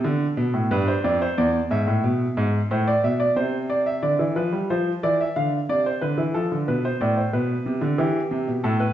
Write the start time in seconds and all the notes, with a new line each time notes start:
Already playing: A4
0.04 D3
0.37 B2
0.54 A2
0.71 G2 B4
0.88 C5
1.04 F2 D5
1.22 C5
1.38 E2 D5
1.71 G#2 E5
1.87 A2
2.04 B2
2.37 G#2
2.71 A2 C5
2.87 D5
3.04 B2 E5
3.20 D5
3.36 C3 C5
3.70 D5
3.86 E5
4.02 D3 D5
4.19 E3
4.36 F3 B4
4.53 G3
4.70 F3 C5
5.03 E3 D5
5.21 E5
5.36 D3 F5
5.69 C3 D5
5.86 C5
6.01 D3 B4
6.18 E3
6.34 F3 A4
6.52 D3
6.68 B2 B4
6.85 C5
7.01 A2 D5
7.17 C5
7.33 B2 B4
7.66 C3
7.81 D3
7.98 E3 G4
8.31 C3
8.48 B2
8.64 A2 A4
8.80 B4